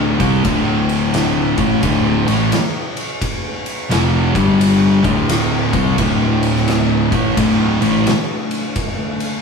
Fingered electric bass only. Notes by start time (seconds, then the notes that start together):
Already playing: D1
0.20 C2
0.45 D1
1.58 A1
1.83 D1
2.28 A1
3.91 F1
4.35 G1
5.04 D1
5.73 C2
5.98 D1
7.13 A1
7.37 D1
7.82 A1